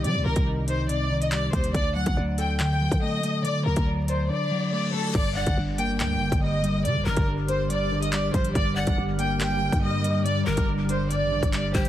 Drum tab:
CC |----------------|----------------|----------------|x---------------|
HH |x--x--x-x--xx-xx|x--x--x-x--x--x-|x--x--x---------|x--x--x-x--x--x-|
CP |------------x---|--------x-------|----------------|--------x-------|
BD |---o----------o-|o--o-------o----|---o------------|o--o-------o----|

CC |----------------|----------------|----------------|
HH |x--x--x-x--xx-xx|x--x--x-x--x--x-|x--x--x-x--xx-xx|
CP |------------x---|--------x-------|------------x---|
BD |---o----------o-|o--o-------o----|---o-------o--o-|